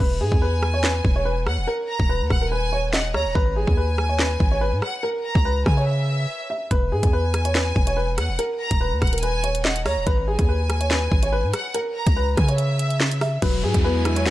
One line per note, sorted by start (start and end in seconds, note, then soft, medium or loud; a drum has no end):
0.00 0.22 E1 loud
0.00 0.19 B4 loud
0.20 0.31 G#2 loud
0.20 0.40 G#4 medium
0.20 1.42 G#5 medium
0.32 1.02 E2 loud
0.32 kick medium
0.42 0.72 B4 medium
0.63 cross-stick loud
0.74 0.83 C#5 medium
0.84 1.14 B4 medium
0.84 snare loud
0.84 clap medium
1.05 1.48 E1 loud
1.05 kick medium
1.16 1.25 C#5 medium
1.25 1.45 B4 medium
1.46 1.59 E2 loud
1.46 1.67 F#5 medium
1.46 cross-stick loud
1.58 1.67 E1 loud
1.67 2.07 A#4 loud
1.88 2.28 A#5 medium
2.00 2.22 D#1 loud
2.00 kick medium
2.09 2.40 B4 medium
2.21 2.30 D#2 loud
2.30 3.16 D#1 loud
2.30 2.51 F#5 medium
2.30 kick medium
2.30 cross-stick loud
2.41 2.51 A#4 medium
2.51 2.71 B4 medium
2.51 2.91 G#5 medium
2.72 2.92 C#5 medium
2.93 3.13 D#5 medium
2.93 3.13 F#5 medium
2.93 snare loud
2.93 clap loud
3.14 3.27 D#2 loud
3.14 3.34 C#5 medium
3.14 3.34 A#5 medium
3.14 cross-stick loud
3.25 3.35 D#1 loud
3.35 3.66 G#1 loud
3.35 3.55 B4 loud
3.35 kick loud
3.56 3.76 G#4 medium
3.56 4.78 G#5 medium
3.67 4.37 D#2 loud
3.67 kick medium
3.77 4.07 B4 medium
3.98 cross-stick loud
4.09 4.18 C#5 medium
4.19 4.49 B4 medium
4.19 snare loud
4.19 clap medium
4.40 4.74 G#1 loud
4.40 kick medium
4.51 4.61 C#5 medium
4.61 4.81 B4 medium
4.72 4.82 G#2 loud
4.82 5.02 F#5 medium
4.82 cross-stick loud
5.03 5.43 A#4 loud
5.24 5.64 A#5 medium
5.35 5.65 C#2 loud
5.35 kick medium
5.45 5.75 B4 medium
5.66 6.26 C#3 loud
5.66 5.86 G#5 medium
5.66 kick medium
5.66 cross-stick loud
5.77 6.46 C#5 medium
5.87 6.67 E5 medium
6.50 6.70 E5 medium
6.71 6.93 E1 loud
6.71 6.91 B4 loud
6.71 kick loud
6.71 closed hi-hat medium
6.92 7.02 G#2 loud
6.92 7.12 G#4 medium
6.92 8.14 G#5 medium
7.03 7.73 E2 loud
7.03 kick medium
7.03 closed hi-hat medium
7.13 7.43 B4 medium
7.34 cross-stick loud
7.34 closed hi-hat medium
7.45 7.54 C#5 medium
7.45 closed hi-hat medium
7.55 7.85 B4 medium
7.55 snare loud
7.55 clap medium
7.76 8.19 E1 loud
7.76 kick medium
7.87 7.96 C#5 medium
7.87 closed hi-hat medium
7.97 8.16 B4 medium
8.18 8.30 E2 loud
8.18 8.38 F#5 medium
8.18 cross-stick loud
8.18 closed hi-hat medium
8.29 8.38 E1 loud
8.39 8.78 A#4 loud
8.39 closed hi-hat medium
8.60 8.99 A#5 medium
8.71 8.93 D#1 loud
8.71 kick medium
8.71 closed hi-hat medium
8.81 9.11 B4 medium
8.92 9.01 D#2 loud
9.02 9.87 D#1 loud
9.02 9.22 F#5 medium
9.02 kick medium
9.02 cross-stick loud
9.02 closed hi-hat soft
9.07 closed hi-hat medium
9.13 9.22 A#4 medium
9.13 closed hi-hat medium
9.18 closed hi-hat medium
9.22 9.42 B4 medium
9.22 9.62 G#5 medium
9.22 closed hi-hat medium
9.44 9.63 C#5 medium
9.44 closed hi-hat medium
9.55 closed hi-hat medium
9.65 9.84 D#5 medium
9.65 9.85 F#5 medium
9.65 snare loud
9.65 clap loud
9.76 closed hi-hat medium
9.85 9.98 D#2 loud
9.85 10.05 C#5 medium
9.85 10.06 A#5 medium
9.85 cross-stick loud
9.85 open hi-hat medium
9.97 10.06 D#1 loud
10.07 10.37 G#1 loud
10.07 10.26 B4 loud
10.07 kick loud
10.07 closed hi-hat medium
10.28 10.47 G#4 medium
10.28 11.50 G#5 medium
10.39 11.09 D#2 loud
10.39 kick loud
10.39 closed hi-hat medium
10.49 10.79 B4 medium
10.70 cross-stick loud
10.70 closed hi-hat medium
10.80 10.90 C#5 medium
10.80 closed hi-hat medium
10.91 11.21 B4 medium
10.91 snare loud
10.91 clap medium
11.12 11.45 G#1 loud
11.12 kick medium
11.23 11.32 C#5 medium
11.23 closed hi-hat medium
11.32 11.52 B4 medium
11.44 11.53 G#2 loud
11.53 11.74 F#5 medium
11.53 cross-stick loud
11.53 closed hi-hat medium
11.74 12.14 A#4 loud
11.74 closed hi-hat medium
11.96 12.35 A#5 medium
12.07 12.36 C#2 loud
12.07 kick medium
12.07 closed hi-hat medium
12.16 12.47 B4 medium
12.37 13.38 C#3 loud
12.37 12.57 G#5 medium
12.37 kick medium
12.37 cross-stick loud
12.37 closed hi-hat medium
12.48 13.17 C#5 medium
12.48 closed hi-hat medium
12.58 13.38 E5 medium
12.58 closed hi-hat medium
12.79 closed hi-hat medium
12.90 closed hi-hat soft
13.00 snare loud
13.00 clap medium
13.11 closed hi-hat medium
13.21 13.41 E5 medium
13.21 cross-stick loud
13.21 open hi-hat medium
13.42 13.65 E1 loud
13.42 14.30 F#3 loud
13.42 14.30 F#3 medium
13.42 14.30 G#3 medium
13.42 14.30 E4 medium
13.42 13.62 B4 loud
13.42 kick loud
13.42 closed hi-hat medium
13.42 crash loud
13.42 downlifter medium
13.63 13.74 G#2 loud
13.63 13.83 G#4 medium
13.63 14.30 G#5 medium
13.74 14.30 E2 loud
13.74 kick medium
13.74 closed hi-hat medium
13.84 14.30 B3 medium
13.84 14.15 B4 loud
14.05 14.30 E4 medium
14.05 cross-stick loud
14.05 closed hi-hat medium
14.16 14.26 C#5 medium
14.16 closed hi-hat medium
14.26 14.30 F#4 loud
14.26 14.30 B4 medium
14.26 snare loud
14.26 clap medium